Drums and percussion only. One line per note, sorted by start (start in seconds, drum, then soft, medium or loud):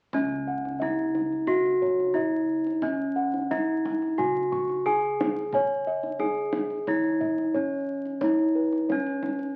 0.13 kendang low medium
0.65 kendang slap soft
0.82 kendang high soft
1.15 kendang high soft
1.32 kendang slap soft
1.47 kendang low medium
1.66 kendang slap soft
1.82 kendang low soft
2.00 kendang slap soft
2.17 kendang low soft
2.67 kendang slap soft
2.82 kendang low medium
3.34 kendang slap soft
3.51 kendang high medium
3.85 kendang high soft
4.02 kendang slap soft
4.19 kendang low medium
4.36 kendang slap soft
4.52 kendang low medium
4.69 kendang slap soft
4.86 kendang low medium
5.21 kendang high medium
5.36 kendang slap soft
5.53 kendang low medium
6.03 kendang slap soft
6.19 kendang high soft
6.53 kendang high soft
6.70 kendang slap soft
6.87 kendang low medium
7.04 kendang slap soft
7.21 kendang low medium
7.38 kendang slap soft
7.54 kendang low soft
8.06 kendang slap soft
8.21 kendang low medium
8.39 kendang slap soft
8.73 kendang slap soft
8.90 kendang high soft
9.06 kendang slap soft
9.23 kendang high soft
9.39 kendang slap soft